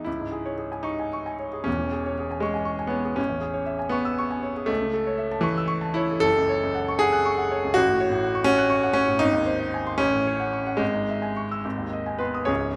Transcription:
grand piano
0.04 C#2 E4
0.20 G#2
0.32 G#4
0.45 C#5
0.58 G#4
0.72 G#5
0.83 D#4 C#6
1.00 G#5
1.13 C#6
1.26 G#5
1.39 C#5
1.53 G#4
1.64 E1 E2 C#4
1.79 E3
1.92 G#4
2.06 C#5
2.19 G#4
2.31 G#5
2.40 G#3 C#6
2.54 G#5
2.65 C#6
2.79 G#5
2.87 B3 C#5
3.05 G#4
3.16 A1 C#4
3.30 E2
3.41 G#4
3.54 C#5
3.66 E5
3.79 G#5
3.89 B3 C#6
4.05 E6
4.19 C#6
4.31 G#5
4.43 C#5
4.57 G#4
4.66 C#2 A3
4.81 C#3
4.93 A4
5.07 C#5
5.18 E5
5.32 A5
5.41 E3 C#6
5.58 E6
5.68 C#6
5.81 A5
5.94 E4 C#5
6.11 A4
6.20 F#1 A4
6.36 C#2
6.49 C#5
6.63 C#2
6.75 F#5
6.88 C#6
6.99 G#4 F#5
7.13 F#6
7.26 C#6
7.38 F#5
7.51 C#5
7.64 C#2
7.74 A1 F#4
7.88 A2
8.00 C#5
8.10 A2
8.23 F#5
8.35 C#6
8.44 C#4 F#5
8.58 F#6
8.70 C#6
8.83 F#5
8.93 C#4 C#5
9.08 A2
9.19 G#1 D#4
9.33 D#2
9.46 C5
9.59 D#5
9.74 G#5
9.87 C6
9.98 A1 C#4
10.14 A2
10.27 C#5
10.40 F#5
10.54 C#6
10.67 F#5
10.77 G#1 G#3
10.94 G#2
11.09 E5
11.22 G#5
11.37 C#6
11.51 E6
11.65 G#1
11.78 D#2
11.93 D#5
12.06 G#5
12.19 B3 B4 C6
12.34 D#6
12.45 C#1 C#2 C#4 G#4 C#5

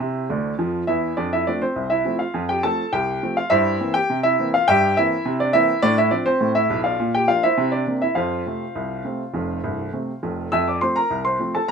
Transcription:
upright piano
Already playing: E4 C5 E5
0.00 C3
0.30 D2 D3
0.58 F2 F3
0.87 E2 E3 E4 E5
1.17 F2 D4 D5
1.33 E4 E5
1.47 F3 A3 C4 D4 D5
1.62 C4 C5
1.76 C2
1.90 E4 E5
2.05 F3 A3 C4
2.19 F4 F5
2.34 F2
2.49 G4 G5
2.63 F3 A3 C4 A4 A5
2.93 C2 G4 G5
3.23 F3 A3 C4
3.37 F4 F5
3.50 G2 E4 C5 E5
3.80 E3 A#3 C4
3.94 G4 G5
4.10 C3
4.23 E4 E5
4.39 E3 A#3 C4
4.54 F4 F5
4.68 G2 G4 E5 G5
4.97 E3 A#3 C4 E4 E5
5.25 C3
5.40 D4 D5
5.53 E3 A#3 C4 E4 E5
5.82 A2 D4 D5
5.98 E4 E5
6.11 F3 C4 D4 D5
6.26 C4 C5
6.41 A2
6.55 E4 E5
6.70 B1 B2
6.84 F4 D5 F5
7.00 A#2
7.15 G4 G5
7.28 F3 A#3 D4 F4 F5
7.43 E4 C5 E5
7.57 C3
7.72 D4 D5
7.87 C3 A#3 C4
8.02 E4 E5
8.15 F2 F4 C5 F5
8.46 C3 A3 C4
8.75 C2
9.04 C3 A3 C4
9.34 F1 F2
9.64 C1 C2
9.93 C3 A3 C4
10.23 F1 F2
10.52 F2 E5 E6
10.68 D5 D6
10.81 F3 A3 C4 C5 C6
10.96 A#4 A#5
11.10 C2
11.25 C5 C6
11.39 F3 A3 C4
11.55 A4 A5
11.68 A#5

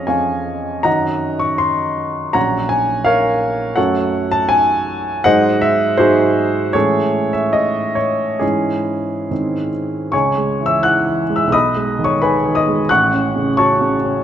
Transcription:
upright piano
Already playing: F2 F3 C#4 G#4 C#5 D#5 F5
0.07 F2 F3 C#4 G#4 C#5 F5 G#5
0.83 F#2 D#3 C#4 F#4 D#5 F#5 A#5
1.39 C#6
1.58 C6
2.33 A#1 F#3 C#4 F#4 C#5 F#5 A#5
2.69 G#5
3.05 A#4 C#5 F5
3.76 F#2 F#3 A3 F#4 A4 C#5 F#5
4.32 A5
4.49 G#5
5.24 G#2 F#3 G#3 D#4 C5 D#5 F#5
5.61 E5
5.97 G#2 F#3 G#3 D#4 F#4 G#4 C5
6.73 A2 E3 G#3 C#4 G#4 A4 C#5
7.33 E5
7.53 D#5
7.95 C#5
8.39 G#2 E3 G#3 C#4 E4 G#4
9.30 G#2 D#3 G#3 C4
10.12 C#2 C#5 G#5 C#6
10.37 G#3
10.61 E3
10.66 E5 E6
10.83 E4 F#5 F#6
11.07 E3
11.29 G#3
11.36 E5 E6
11.47 B1
11.52 D#5 B5 D#6
11.76 G#3
11.99 D#3
12.04 C#5 C#6
12.22 G#4 B4 G#5 B5
12.45 D#3
12.55 D#5 D#6
12.67 G#3
12.89 A1 F#5 C#6 F#6
13.14 C#4
13.35 C#3
13.57 F#4 C#5 A5 C#6
13.81 C#3
14.04 C#4

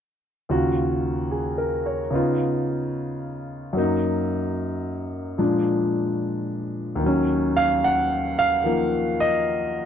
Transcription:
grand piano
0.49 D#2 C#3 F4 F#4
1.31 G#4
1.58 A#4
1.86 C#5
2.11 C#3 B3 D#4
2.15 F4
3.73 F#2 F#3 A#3
3.78 D#4
5.38 A#2 F3 G#3 D4
6.95 D#2 D#3
7.03 F#3 C#4
7.57 F5
7.84 F#5
8.39 F5
8.64 D#3 F3 A#3
9.20 D#5

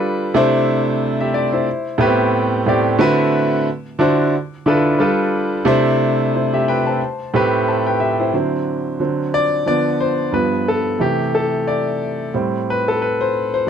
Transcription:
grand piano
Already playing: G3 D4 F4 A4 B4
0.34 C3 A3 D4 E4 C5
1.20 G4 E5
1.34 D5
1.53 E4 C5
1.98 A2 A3 B3 G4 B4
2.06 C4
2.66 A2 A3 C4 G4 D5
2.98 D3 A3 C4 E4 F#4 B4
3.99 D3 D4 E4 F#4 C5
4.66 D3 D4 E4 F4 A4 B4
4.99 G3 D4 F4 A4 B4
5.65 C3 A3 D4 E4 C5
6.35 E4 C5
6.54 G4 E5
6.68 B4 G5
6.87 C5 A5
7.34 A2 A3 C4 G4 B4
7.68 C5 A5
7.87 B4 G5
8.00 G4 E5
8.20 E4 C5
8.34 D3 F#3 C4
9.00 D3 F#3 C4
9.34 D5
9.66 D3 F3 B3 D5
10.00 C5
10.32 G2 F3 B3 B4
10.68 A4
10.99 C3 E3 A3 G4
11.35 A4
11.68 D5
12.34 A2 G3 C4
12.70 B4
12.88 A4
13.02 B4
13.21 C5
13.54 C5

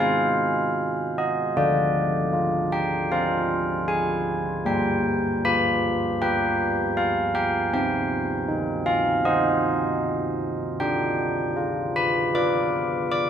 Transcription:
church bells
Already playing: G#3
0.00 D#4 C5 F5
1.18 D#5
1.57 D3 D5
2.33 F4
2.72 G5
3.12 F4 C5 F5
3.88 G#5
4.65 G3 G5
5.45 F4 B5
6.22 F4 B4 G5
6.97 F5
7.35 G5
7.74 C4 G5
8.48 D#4
8.86 F5
9.25 D#4 C5 D#5
10.80 D4 G5
11.56 F4
11.96 B5
12.35 F4 B4 D6
13.12 D6

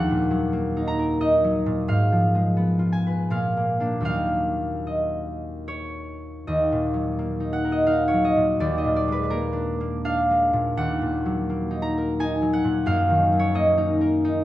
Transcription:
harp
Already playing: D#2 A#3 A#4 F#5
0.11 A#2
0.31 F#3
0.53 A#3
0.77 D#4
0.88 A#5
0.99 A#4
1.21 D#4 D#5
1.44 F#3
1.66 A#2
1.88 G#2 F5
2.12 F3
2.35 G#3
2.57 B3
2.79 F4
2.92 G#5
3.07 B4
3.30 A#2 F5
3.57 A#3
3.80 A#3 D4
4.01 D#2 F#3 A#3 D#4
4.05 F5
4.87 D#5
5.68 C#5
6.47 D#2 D#5
6.72 A#2
6.94 F#3
7.19 A#3
7.40 D#4
7.53 F#5
7.65 A#4
7.72 D#5
7.87 D#4 F5
8.08 C#5
8.14 F#3
8.25 D#5
8.36 A#2
8.60 D#2 D5
8.78 D#5
8.84 A#2
8.96 D5
9.08 G#3
9.12 B4
9.23 B4
9.30 A#3 A#4
9.53 D4
9.80 A#3
10.05 D4 F5
10.30 G#3
10.53 A#2
10.77 D#2 F#5
11.02 A#2
11.26 F#3
11.50 A#3
11.71 D#4
11.82 A#5
11.98 A#4
12.20 D#4 G#5
12.42 F#3
12.53 F#5
12.64 A#2
12.86 F#2 F5
13.10 D#3
13.33 F#3
13.39 C#5
13.54 A#3 D#5
13.78 D#4
14.01 A#4
14.25 D#4

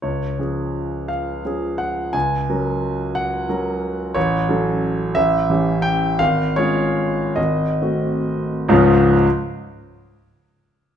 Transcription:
grand piano
0.02 C#2 C#5
0.39 F3 C#4 G#4
1.08 F5
1.45 F3 C#4 G#4
1.78 F#5
2.13 C#2 G#5
2.50 F#3 C#4 A#4
3.15 F#5
3.49 F#3 C#4 A#4
4.14 A1 C#5
4.49 F#3 C#4 A4
5.15 A1 E5
5.50 E3 C#4 G4
5.82 G5
6.19 G#1 F5
6.56 G#3 C#4 F4 C#5
7.36 G#1 D#5
7.81 A3 C4 F#4
8.69 C#2 G#2 F3 G#3 C#4 F4 F5

